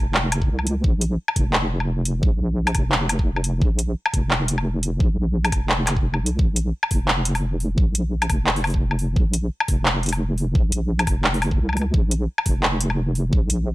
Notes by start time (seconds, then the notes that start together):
Already playing: F1
0.15 clap
0.32 closed hi-hat, low woodblock
0.42 kick
0.49 C2
0.59 low woodblock
0.67 C#2, closed hi-hat
0.84 A#1, kick
1.01 closed hi-hat
1.28 low woodblock
1.36 F1, kick, closed hi-hat
1.53 clap
1.80 low woodblock
2.05 closed hi-hat
2.23 A#1, kick
2.40 A#1
2.67 closed hi-hat, low woodblock
2.75 F1, kick, closed hi-hat, low woodblock
2.92 clap
3.09 closed hi-hat, low woodblock
3.19 kick
3.36 low woodblock
3.44 closed hi-hat
3.61 A#1, kick
3.79 closed hi-hat
4.06 low woodblock
4.14 F1, kick, closed hi-hat
4.31 clap
4.48 closed hi-hat
4.58 low woodblock
4.83 closed hi-hat
5.00 A#1, kick
5.18 A#1
5.45 closed hi-hat, low woodblock
5.52 F1, kick, closed hi-hat, low woodblock
5.70 clap
5.87 clap, closed hi-hat, low woodblock
5.97 kick
6.14 low woodblock
6.22 C2
6.26 closed hi-hat
6.39 A#1, kick
6.56 closed hi-hat
6.83 low woodblock
6.91 F1, kick, open hi-hat
7.08 clap
7.25 closed hi-hat
7.35 open hi-hat, low woodblock
7.60 open hi-hat
7.78 A#1, kick
7.95 A#1, closed hi-hat
8.22 closed hi-hat, low woodblock
8.30 F1, kick, open hi-hat, low woodblock
8.47 clap
8.56 open hi-hat
8.64 open hi-hat, low woodblock
8.67 open hi-hat
8.70 open hi-hat
8.74 kick
8.91 low woodblock
8.99 open hi-hat
9.16 A#1, kick
9.33 closed hi-hat
9.60 low woodblock
9.68 F1, kick, open hi-hat
9.86 clap
10.03 closed hi-hat
10.06 closed hi-hat
10.09 closed hi-hat, low woodblock
10.38 open hi-hat
10.55 A#1, kick
10.72 A#1, closed hi-hat
10.99 closed hi-hat, low woodblock
11.07 F1, kick, open hi-hat, low woodblock
11.24 clap
11.34 open hi-hat
11.42 open hi-hat, low woodblock
11.51 kick
11.60 C2
11.69 low woodblock
11.73 C#2, open hi-hat, low woodblock
11.77 low woodblock
11.82 low woodblock
11.94 A#1, kick
12.11 closed hi-hat
12.38 low woodblock
12.46 F1, kick, open hi-hat
12.63 clap
12.81 closed hi-hat
12.90 low woodblock
13.15 open hi-hat
13.33 A#1, kick
13.50 A#1, closed hi-hat